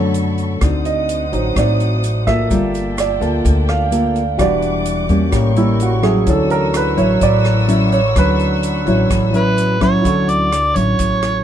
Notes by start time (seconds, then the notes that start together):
Already playing: F#2 D3 F#3 A3 C#4 D4 A4 C#5 A5 B5 C#6
0.14 closed hi-hat, shaker
0.38 closed hi-hat, shaker
0.61 D2 D3 C4 D#4 F#4 C5 F#5 D#6, kick, cross-stick, closed hi-hat, shaker
0.85 D#5, closed hi-hat, shaker
1.09 closed hi-hat, shaker
1.32 A1 F#3 C4 D#4, closed hi-hat, shaker
1.56 A1 A3 C4 D#4 F#4 D5, kick, cross-stick, closed hi-hat, shaker
1.80 closed hi-hat, shaker
2.04 closed hi-hat, shaker
2.26 A#3 F4 A4 E5, kick, cross-stick, closed hi-hat, shaker
2.50 G1 G3 A#3 F4 G5 A5, kick, closed hi-hat, shaker
2.74 closed hi-hat, shaker
2.98 D5, cross-stick, closed hi-hat, shaker
3.20 D2 A#3 F4 A4, closed hi-hat, shaker
3.44 D2 D3, kick, closed hi-hat, shaker
3.69 F5, cross-stick, closed hi-hat, shaker
3.91 A#3 F4 A4, closed hi-hat, shaker
4.16 closed hi-hat, shaker
4.37 E1 E3 G3 D4 F#4 D5 F#5 D6, kick, cross-stick, closed hi-hat, shaker
4.62 closed hi-hat, shaker
4.85 closed hi-hat, shaker
5.09 E2 G3 A#3 C#4, closed hi-hat, shaker
5.32 A1 A2 G3 A#3 C#4 A#4 G5 C#6, kick, cross-stick, closed hi-hat, shaker
5.55 G3 A#3 C#4 E4, closed hi-hat, shaker
5.80 F#4, closed hi-hat, shaker
6.02 F#3 C#4 E4 G#4, cross-stick, closed hi-hat, shaker
6.26 D2 D3 E3 F#3 C#4 A4 F#5 C#6 E6, kick, closed hi-hat, shaker
6.50 A#4, closed hi-hat, shaker
6.74 B4, cross-stick, closed hi-hat, shaker
6.97 A1 F#3 C#4 E4 C#5, closed hi-hat, shaker
7.21 A1 A2 D5, kick, closed hi-hat, shaker
7.45 cross-stick, closed hi-hat, shaker
7.68 F#3 C#4 E4, closed hi-hat, shaker
7.92 C#5, closed hi-hat, shaker
8.16 D2 D3 F#3 C#4 E4 B4, kick, cross-stick, closed hi-hat, shaker
8.39 closed hi-hat, shaker
8.63 closed hi-hat, shaker
8.86 A1 E3 F#3 C#4 E4, closed hi-hat, shaker
9.09 A1 A2, kick, cross-stick, closed hi-hat, shaker
9.33 F#3 C#4 E4 B4, closed hi-hat, shaker
9.58 closed hi-hat, shaker
9.80 F#3 C#4 E4 C#5, kick, cross-stick, closed hi-hat, shaker
10.01 D2 D3 E4 F#4 A4, kick, closed hi-hat
10.06 C#6, shaker
10.29 D5, closed hi-hat, shaker
10.52 cross-stick, closed hi-hat, shaker
10.75 A1 F#3 C#4 E4 C#5, closed hi-hat, shaker
10.99 A1 A2, kick, closed hi-hat, shaker
11.22 cross-stick, closed hi-hat, shaker